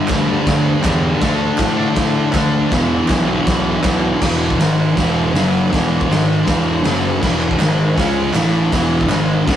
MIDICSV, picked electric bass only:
0, 0, Header, 1, 2, 480
1, 0, Start_track
1, 0, Tempo, 375940
1, 1541, Time_signature, 4, 2, 24, 8
1, 12211, End_track
2, 0, Start_track
2, 0, Title_t, "Picked electric bass"
2, 0, Program_c, 0, 34
2, 107, Note_on_c, 0, 38, 88
2, 469, Note_off_c, 0, 38, 0
2, 597, Note_on_c, 0, 38, 95
2, 956, Note_off_c, 0, 38, 0
2, 1078, Note_on_c, 0, 40, 99
2, 1438, Note_off_c, 0, 40, 0
2, 1560, Note_on_c, 0, 38, 97
2, 1920, Note_off_c, 0, 38, 0
2, 2027, Note_on_c, 0, 45, 86
2, 2392, Note_off_c, 0, 45, 0
2, 2503, Note_on_c, 0, 45, 94
2, 2870, Note_off_c, 0, 45, 0
2, 2982, Note_on_c, 0, 38, 101
2, 3349, Note_off_c, 0, 38, 0
2, 3469, Note_on_c, 0, 28, 99
2, 3834, Note_off_c, 0, 28, 0
2, 3941, Note_on_c, 0, 35, 88
2, 4309, Note_off_c, 0, 35, 0
2, 4422, Note_on_c, 0, 35, 93
2, 4790, Note_off_c, 0, 35, 0
2, 4899, Note_on_c, 0, 35, 87
2, 5268, Note_off_c, 0, 35, 0
2, 5386, Note_on_c, 0, 28, 88
2, 5833, Note_off_c, 0, 28, 0
2, 5850, Note_on_c, 0, 32, 92
2, 6304, Note_off_c, 0, 32, 0
2, 6338, Note_on_c, 0, 28, 93
2, 6788, Note_off_c, 0, 28, 0
2, 6802, Note_on_c, 0, 30, 98
2, 7259, Note_off_c, 0, 30, 0
2, 7315, Note_on_c, 0, 28, 91
2, 7756, Note_off_c, 0, 28, 0
2, 7789, Note_on_c, 0, 32, 92
2, 8233, Note_off_c, 0, 32, 0
2, 8261, Note_on_c, 0, 28, 94
2, 8708, Note_off_c, 0, 28, 0
2, 8746, Note_on_c, 0, 30, 92
2, 9190, Note_off_c, 0, 30, 0
2, 9226, Note_on_c, 0, 28, 102
2, 9669, Note_off_c, 0, 28, 0
2, 9708, Note_on_c, 0, 32, 95
2, 10150, Note_off_c, 0, 32, 0
2, 10181, Note_on_c, 0, 37, 104
2, 10625, Note_off_c, 0, 37, 0
2, 10639, Note_on_c, 0, 33, 98
2, 11093, Note_off_c, 0, 33, 0
2, 11140, Note_on_c, 0, 28, 102
2, 11584, Note_off_c, 0, 28, 0
2, 11601, Note_on_c, 0, 32, 94
2, 12054, Note_off_c, 0, 32, 0
2, 12095, Note_on_c, 0, 37, 98
2, 12211, Note_off_c, 0, 37, 0
2, 12211, End_track
0, 0, End_of_file